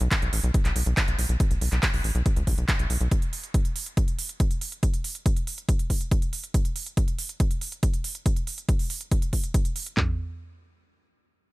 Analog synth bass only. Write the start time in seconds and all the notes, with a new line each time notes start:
0.01 B1
0.22 B1
0.33 A1
0.44 B1
0.65 B1
0.76 B1
0.86 B1
1.08 B1
1.19 B1
1.29 B1
1.51 B1
1.61 B1
1.72 B1
1.94 B1
2.04 A1
2.15 B1
2.36 C#2
2.47 B1
2.58 B1
2.79 B1
2.90 B1
3.01 B1